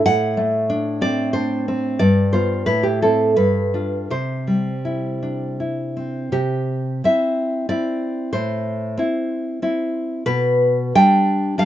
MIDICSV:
0, 0, Header, 1, 2, 480
1, 0, Start_track
1, 0, Key_signature, 0, "major"
1, 0, Tempo, 655738
1, 33, Time_signature, 3, 2, 24, 8
1, 1953, Tempo, 700935
1, 2433, Tempo, 743494
1, 3873, Tempo, 719424
1, 4833, Tempo, 648649
1, 8246, End_track
2, 0, Start_track
2, 0, Title_t, "Nylon-string guitar"
2, 0, Program_c, 0, 24
2, 41, Note_on_c, 0, 45, 62
2, 41, Note_on_c, 0, 78, 96
2, 272, Note_on_c, 0, 57, 39
2, 509, Note_on_c, 0, 62, 52
2, 716, Note_off_c, 0, 78, 0
2, 741, Note_on_c, 0, 60, 42
2, 745, Note_on_c, 0, 74, 83
2, 971, Note_off_c, 0, 74, 0
2, 972, Note_off_c, 0, 62, 0
2, 974, Note_on_c, 0, 72, 63
2, 978, Note_off_c, 0, 57, 0
2, 980, Note_on_c, 0, 62, 43
2, 1207, Note_off_c, 0, 72, 0
2, 1222, Note_off_c, 0, 60, 0
2, 1230, Note_on_c, 0, 60, 42
2, 1436, Note_off_c, 0, 45, 0
2, 1459, Note_on_c, 0, 74, 88
2, 1462, Note_off_c, 0, 62, 0
2, 1463, Note_on_c, 0, 43, 56
2, 1467, Note_off_c, 0, 60, 0
2, 1695, Note_off_c, 0, 74, 0
2, 1703, Note_on_c, 0, 72, 60
2, 1711, Note_on_c, 0, 59, 37
2, 1712, Note_on_c, 0, 65, 40
2, 1930, Note_off_c, 0, 65, 0
2, 1931, Note_off_c, 0, 59, 0
2, 1939, Note_off_c, 0, 43, 0
2, 1941, Note_off_c, 0, 72, 0
2, 1948, Note_on_c, 0, 71, 71
2, 1949, Note_on_c, 0, 45, 51
2, 2065, Note_on_c, 0, 67, 49
2, 2067, Note_off_c, 0, 71, 0
2, 2187, Note_off_c, 0, 67, 0
2, 2196, Note_on_c, 0, 69, 57
2, 2197, Note_on_c, 0, 64, 41
2, 2200, Note_on_c, 0, 60, 36
2, 2414, Note_off_c, 0, 64, 0
2, 2415, Note_off_c, 0, 60, 0
2, 2417, Note_off_c, 0, 45, 0
2, 2427, Note_off_c, 0, 69, 0
2, 2430, Note_on_c, 0, 71, 55
2, 2433, Note_on_c, 0, 43, 42
2, 2672, Note_on_c, 0, 62, 29
2, 2676, Note_on_c, 0, 65, 31
2, 2887, Note_off_c, 0, 62, 0
2, 2888, Note_off_c, 0, 65, 0
2, 2888, Note_off_c, 0, 71, 0
2, 2894, Note_off_c, 0, 43, 0
2, 2908, Note_on_c, 0, 48, 44
2, 2912, Note_on_c, 0, 72, 54
2, 3146, Note_on_c, 0, 55, 28
2, 3389, Note_on_c, 0, 64, 35
2, 3632, Note_on_c, 0, 62, 26
2, 3865, Note_off_c, 0, 64, 0
2, 3870, Note_off_c, 0, 55, 0
2, 3873, Note_on_c, 0, 64, 29
2, 4097, Note_off_c, 0, 72, 0
2, 4118, Note_on_c, 0, 60, 28
2, 4333, Note_off_c, 0, 48, 0
2, 4353, Note_off_c, 0, 64, 0
2, 4354, Note_on_c, 0, 48, 52
2, 4356, Note_on_c, 0, 67, 61
2, 4358, Note_off_c, 0, 60, 0
2, 4360, Note_off_c, 0, 62, 0
2, 4811, Note_off_c, 0, 67, 0
2, 4816, Note_off_c, 0, 48, 0
2, 4835, Note_on_c, 0, 60, 38
2, 4839, Note_on_c, 0, 64, 42
2, 4843, Note_on_c, 0, 76, 74
2, 5306, Note_off_c, 0, 60, 0
2, 5306, Note_off_c, 0, 76, 0
2, 5312, Note_off_c, 0, 64, 0
2, 5314, Note_on_c, 0, 60, 38
2, 5314, Note_on_c, 0, 74, 64
2, 5321, Note_on_c, 0, 64, 41
2, 5766, Note_off_c, 0, 60, 0
2, 5769, Note_off_c, 0, 64, 0
2, 5775, Note_off_c, 0, 74, 0
2, 5786, Note_on_c, 0, 72, 69
2, 5791, Note_on_c, 0, 45, 56
2, 6255, Note_off_c, 0, 45, 0
2, 6266, Note_on_c, 0, 60, 43
2, 6276, Note_on_c, 0, 64, 48
2, 6736, Note_off_c, 0, 60, 0
2, 6740, Note_off_c, 0, 64, 0
2, 6745, Note_on_c, 0, 60, 37
2, 6749, Note_on_c, 0, 64, 42
2, 6954, Note_off_c, 0, 72, 0
2, 7190, Note_off_c, 0, 60, 0
2, 7192, Note_off_c, 0, 64, 0
2, 7216, Note_on_c, 0, 71, 79
2, 7220, Note_on_c, 0, 47, 62
2, 7701, Note_off_c, 0, 71, 0
2, 7708, Note_off_c, 0, 47, 0
2, 7730, Note_on_c, 0, 55, 45
2, 7731, Note_on_c, 0, 79, 86
2, 7735, Note_on_c, 0, 62, 52
2, 8180, Note_off_c, 0, 79, 0
2, 8187, Note_off_c, 0, 62, 0
2, 8188, Note_off_c, 0, 55, 0
2, 8194, Note_on_c, 0, 62, 52
2, 8198, Note_on_c, 0, 55, 47
2, 8202, Note_on_c, 0, 77, 80
2, 8246, Note_off_c, 0, 55, 0
2, 8246, Note_off_c, 0, 62, 0
2, 8246, Note_off_c, 0, 77, 0
2, 8246, End_track
0, 0, End_of_file